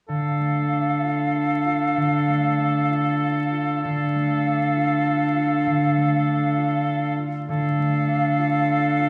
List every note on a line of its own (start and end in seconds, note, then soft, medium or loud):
0.08 1.96 D3 soft
0.08 3.80 D4 soft
0.08 3.79 A4 soft
0.08 3.79 F5 soft
0.40 2.28 A3 soft
0.73 2.58 D4 soft
1.05 1.65 F4 soft
1.35 3.20 A4 soft
1.66 2.89 F4 soft
1.97 3.83 D3 soft
2.29 4.14 A3 soft
2.59 4.45 D4 soft
2.91 3.51 F4 soft
3.22 5.05 A4 soft
3.53 4.75 F4 soft
3.83 5.65 D3 soft
3.83 7.18 D4 soft
3.83 7.17 A4 soft
3.83 7.17 F5 soft
4.15 5.96 A3 soft
4.46 6.27 D4 soft
4.76 5.35 F4 soft
5.06 6.87 A4 soft
5.36 6.57 F4 soft
5.67 7.47 D3 soft
5.97 7.77 A3 soft
6.28 8.07 D4 soft
6.58 7.17 F4 soft
6.88 8.68 A4 soft
7.18 8.38 F4 soft
7.48 9.09 D3 soft
7.48 9.09 D4 medium
7.48 9.09 A4 soft
7.48 9.09 F5 soft
7.78 9.09 A3 soft
8.08 9.09 D4 soft
8.39 8.99 F4 soft
8.69 9.09 A4 soft
9.00 9.09 F4 soft